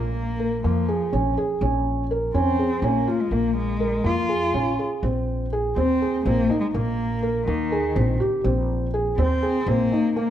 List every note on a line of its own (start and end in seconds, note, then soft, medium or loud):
0.00 0.61 A#1 medium
0.00 0.32 A#3 medium
0.00 0.64 A#3 medium
0.39 0.60 A#4 medium
0.64 1.10 F2 medium
0.64 1.33 F3 medium
0.64 0.85 A#3 medium
0.88 1.09 G#4 medium
1.13 1.36 A#1 medium
1.13 1.33 C#4 medium
1.38 1.58 G#4 medium
1.61 2.30 A#1 medium
1.61 2.03 C#4 medium
2.11 2.31 A#4 medium
2.34 2.80 F2 medium
2.34 2.86 C4 medium
2.34 2.55 C#4 medium
2.59 2.79 G#4 medium
2.82 3.05 A#1 medium
2.82 3.22 A#3 medium
2.82 3.04 C#4 medium
3.07 3.28 F4 medium
3.21 3.34 G#3 medium
3.31 4.00 A#1 medium
3.31 3.73 A#3 medium
3.31 3.56 A#3 medium
3.57 4.08 G#3 medium
3.80 4.01 A#4 medium
4.04 4.51 F2 medium
4.04 4.25 A#3 medium
4.04 4.79 F4 medium
4.29 4.50 G#4 medium
4.54 4.77 A#1 medium
4.54 4.75 C#4 medium
4.79 5.00 G#4 soft
5.03 5.73 A#1 medium
5.03 5.45 C4 medium
5.53 5.73 G#4 medium
5.76 6.23 D#2 medium
5.76 5.98 C4 medium
5.76 6.23 C4 medium
6.02 6.22 G#4 medium
6.25 6.49 A#1 medium
6.25 6.59 A#3 medium
6.25 6.47 C4 medium
6.50 6.70 D#4 medium
6.60 6.66 G#3 medium
6.73 7.44 A#1 medium
6.73 7.43 A#3 medium
6.73 7.15 A#3 medium
7.23 7.44 A#4 medium
7.47 7.93 D#2 medium
7.47 8.16 D#3 medium
7.47 7.68 A#3 medium
7.72 7.92 G#4 medium
7.96 8.19 A#1 medium
7.96 8.16 C4 medium
8.20 8.41 G4 medium
8.44 9.14 A#1 medium
8.44 8.86 C4 medium
8.94 9.14 G#4 medium
9.18 9.64 D#2 medium
9.18 9.69 C4 medium
9.18 9.39 C4 medium
9.43 9.63 G#4 medium
9.67 9.90 A#1 medium
9.67 10.16 A#3 medium
9.67 9.88 C4 medium
9.92 10.13 D#4 medium
10.16 10.30 A#3 medium